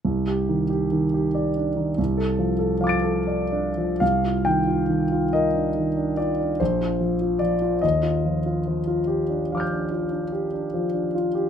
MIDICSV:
0, 0, Header, 1, 2, 480
1, 0, Start_track
1, 0, Key_signature, -3, "minor"
1, 0, Tempo, 888889
1, 28, Time_signature, 9, 3, 24, 8
1, 507, Tempo, 832178
1, 1467, Tempo, 927357
1, 2427, Tempo, 860832
1, 3387, Tempo, 826446
1, 6474, End_track
2, 0, Start_track
2, 0, Title_t, "Grand piano"
2, 0, Program_c, 0, 0
2, 25, Note_on_c, 0, 36, 34
2, 130, Control_c, 0, 64, 127
2, 147, Note_on_c, 0, 67, 27
2, 264, Note_on_c, 0, 51, 28
2, 340, Note_off_c, 0, 67, 0
2, 377, Note_on_c, 0, 67, 28
2, 457, Note_off_c, 0, 51, 0
2, 495, Note_on_c, 0, 51, 28
2, 577, Note_off_c, 0, 67, 0
2, 623, Note_on_c, 0, 67, 30
2, 700, Note_off_c, 0, 51, 0
2, 741, Note_on_c, 0, 74, 33
2, 822, Note_off_c, 0, 67, 0
2, 869, Note_on_c, 0, 62, 31
2, 939, Note_off_c, 0, 74, 0
2, 981, Note_on_c, 0, 51, 30
2, 1060, Note_off_c, 0, 62, 0
2, 1085, Note_off_c, 0, 36, 0
2, 1104, Note_off_c, 0, 51, 0
2, 1110, Note_on_c, 0, 36, 39
2, 1121, Control_c, 0, 64, 0
2, 1219, Note_on_c, 0, 69, 34
2, 1226, Control_c, 0, 64, 127
2, 1343, Note_on_c, 0, 53, 37
2, 1414, Note_off_c, 0, 69, 0
2, 1458, Note_on_c, 0, 69, 39
2, 1532, Note_off_c, 0, 53, 0
2, 1572, Note_on_c, 0, 53, 35
2, 1573, Note_on_c, 0, 77, 32
2, 1589, Note_on_c, 0, 86, 31
2, 1605, Note_on_c, 0, 93, 31
2, 1616, Note_on_c, 0, 98, 33
2, 1644, Note_off_c, 0, 69, 0
2, 1686, Note_on_c, 0, 69, 42
2, 1764, Note_off_c, 0, 53, 0
2, 1813, Note_on_c, 0, 74, 38
2, 1890, Note_off_c, 0, 69, 0
2, 1943, Note_on_c, 0, 62, 39
2, 2023, Note_off_c, 0, 74, 0
2, 2075, Note_on_c, 0, 53, 33
2, 2147, Note_off_c, 0, 62, 0
2, 2173, Note_off_c, 0, 77, 0
2, 2176, Note_off_c, 0, 36, 0
2, 2181, Note_off_c, 0, 86, 0
2, 2189, Note_off_c, 0, 93, 0
2, 2191, Note_on_c, 0, 77, 56
2, 2195, Note_off_c, 0, 98, 0
2, 2196, Note_off_c, 0, 53, 0
2, 2197, Note_on_c, 0, 36, 34
2, 2207, Control_c, 0, 64, 0
2, 2307, Control_c, 0, 64, 127
2, 2315, Note_on_c, 0, 65, 26
2, 2422, Note_on_c, 0, 79, 58
2, 2424, Note_off_c, 0, 77, 0
2, 2428, Note_on_c, 0, 51, 26
2, 2502, Note_off_c, 0, 65, 0
2, 2548, Note_on_c, 0, 65, 27
2, 2622, Note_off_c, 0, 51, 0
2, 2667, Note_on_c, 0, 51, 27
2, 2741, Note_off_c, 0, 65, 0
2, 2795, Note_on_c, 0, 65, 28
2, 2860, Note_off_c, 0, 51, 0
2, 2906, Note_off_c, 0, 79, 0
2, 2913, Note_on_c, 0, 75, 55
2, 2920, Note_on_c, 0, 70, 30
2, 2984, Note_off_c, 0, 65, 0
2, 3033, Note_on_c, 0, 62, 29
2, 3106, Note_off_c, 0, 70, 0
2, 3158, Note_on_c, 0, 51, 26
2, 3223, Note_off_c, 0, 62, 0
2, 3268, Note_on_c, 0, 62, 27
2, 3345, Note_off_c, 0, 51, 0
2, 3383, Note_on_c, 0, 74, 50
2, 3388, Note_on_c, 0, 65, 27
2, 3390, Note_off_c, 0, 75, 0
2, 3461, Note_off_c, 0, 62, 0
2, 3514, Note_on_c, 0, 62, 27
2, 3584, Note_off_c, 0, 65, 0
2, 3609, Note_off_c, 0, 36, 0
2, 3629, Note_off_c, 0, 74, 0
2, 3630, Note_on_c, 0, 72, 48
2, 3634, Note_off_c, 0, 62, 0
2, 3635, Note_on_c, 0, 34, 37
2, 3643, Control_c, 0, 64, 0
2, 3745, Control_c, 0, 64, 127
2, 3754, Note_on_c, 0, 65, 27
2, 3867, Note_on_c, 0, 53, 29
2, 3941, Note_off_c, 0, 65, 0
2, 3989, Note_on_c, 0, 65, 27
2, 4057, Note_off_c, 0, 53, 0
2, 4091, Note_on_c, 0, 74, 53
2, 4099, Note_on_c, 0, 53, 29
2, 4104, Note_off_c, 0, 72, 0
2, 4178, Note_off_c, 0, 65, 0
2, 4221, Note_on_c, 0, 65, 29
2, 4295, Note_off_c, 0, 53, 0
2, 4327, Note_off_c, 0, 34, 0
2, 4337, Note_on_c, 0, 75, 55
2, 4339, Note_off_c, 0, 74, 0
2, 4345, Note_off_c, 0, 65, 0
2, 4345, Note_on_c, 0, 39, 35
2, 4356, Control_c, 0, 64, 0
2, 4446, Control_c, 0, 64, 127
2, 4461, Note_on_c, 0, 65, 27
2, 4590, Note_on_c, 0, 53, 28
2, 4659, Note_off_c, 0, 65, 0
2, 4712, Note_on_c, 0, 65, 30
2, 4784, Note_off_c, 0, 53, 0
2, 4837, Note_on_c, 0, 53, 27
2, 4905, Note_off_c, 0, 65, 0
2, 4951, Note_on_c, 0, 65, 30
2, 5029, Note_off_c, 0, 53, 0
2, 5067, Note_on_c, 0, 67, 33
2, 5148, Note_off_c, 0, 65, 0
2, 5197, Note_on_c, 0, 62, 30
2, 5267, Note_off_c, 0, 67, 0
2, 5327, Note_on_c, 0, 53, 27
2, 5327, Note_on_c, 0, 77, 23
2, 5343, Note_on_c, 0, 86, 22
2, 5357, Note_on_c, 0, 89, 24
2, 5373, Note_on_c, 0, 91, 22
2, 5392, Note_off_c, 0, 62, 0
2, 5443, Note_on_c, 0, 62, 28
2, 5515, Note_off_c, 0, 53, 0
2, 5557, Note_on_c, 0, 65, 29
2, 5631, Note_off_c, 0, 62, 0
2, 5675, Note_on_c, 0, 62, 29
2, 5746, Note_off_c, 0, 65, 0
2, 5793, Note_on_c, 0, 67, 31
2, 5864, Note_off_c, 0, 62, 0
2, 5914, Note_on_c, 0, 62, 29
2, 5982, Note_off_c, 0, 67, 0
2, 6035, Note_on_c, 0, 53, 31
2, 6103, Note_off_c, 0, 62, 0
2, 6149, Note_on_c, 0, 62, 28
2, 6223, Note_off_c, 0, 53, 0
2, 6263, Note_off_c, 0, 75, 0
2, 6274, Note_on_c, 0, 65, 34
2, 6340, Note_off_c, 0, 62, 0
2, 6389, Note_on_c, 0, 67, 32
2, 6462, Note_off_c, 0, 65, 0
2, 6474, Note_off_c, 0, 39, 0
2, 6474, Note_off_c, 0, 67, 0
2, 6474, Note_off_c, 0, 77, 0
2, 6474, Note_off_c, 0, 86, 0
2, 6474, Note_off_c, 0, 89, 0
2, 6474, Note_off_c, 0, 91, 0
2, 6474, End_track
0, 0, End_of_file